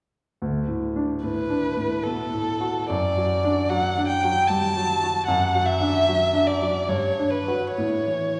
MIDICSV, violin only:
0, 0, Header, 1, 2, 480
1, 0, Start_track
1, 0, Key_signature, 2, "major"
1, 0, Tempo, 839161
1, 230, Time_signature, 3, 2, 24, 8
1, 1660, Tempo, 792602
1, 3580, Tempo, 827586
1, 4060, Tempo, 884956
1, 4873, End_track
2, 0, Start_track
2, 0, Title_t, "Violin"
2, 0, Program_c, 0, 40
2, 712, Note_on_c, 0, 71, 52
2, 1164, Note_on_c, 0, 69, 50
2, 1173, Note_off_c, 0, 71, 0
2, 1657, Note_off_c, 0, 69, 0
2, 1660, Note_on_c, 0, 74, 49
2, 2140, Note_on_c, 0, 78, 59
2, 2149, Note_off_c, 0, 74, 0
2, 2370, Note_off_c, 0, 78, 0
2, 2374, Note_on_c, 0, 79, 60
2, 2616, Note_on_c, 0, 81, 67
2, 2625, Note_off_c, 0, 79, 0
2, 3087, Note_off_c, 0, 81, 0
2, 3090, Note_on_c, 0, 78, 52
2, 3329, Note_on_c, 0, 76, 65
2, 3338, Note_off_c, 0, 78, 0
2, 3810, Note_on_c, 0, 74, 54
2, 3819, Note_off_c, 0, 76, 0
2, 4050, Note_on_c, 0, 73, 53
2, 4058, Note_off_c, 0, 74, 0
2, 4278, Note_on_c, 0, 71, 52
2, 4286, Note_off_c, 0, 73, 0
2, 4512, Note_off_c, 0, 71, 0
2, 4515, Note_on_c, 0, 73, 45
2, 4873, Note_off_c, 0, 73, 0
2, 4873, End_track
0, 0, End_of_file